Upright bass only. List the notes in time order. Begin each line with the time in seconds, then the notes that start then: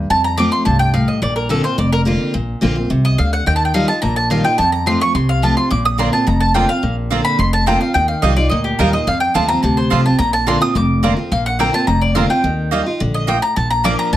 0.10 F2
0.66 C2
1.22 A#1
1.78 F1
2.35 A#1
2.62 A#1
2.90 C2
3.19 D2
3.47 D#2
4.03 A#1
4.59 F2
5.15 C2
5.71 A#1
6.27 F1
6.83 A#1
7.39 F1
7.95 D#2
8.23 C2
8.51 D2
8.79 D#2
9.07 F2
9.35 D#2
9.63 D2
9.91 C2
10.19 A#1
10.75 F1
11.31 A#1
11.87 F1
12.44 D#2
13.01 A#1
13.57 A#1
14.13 F2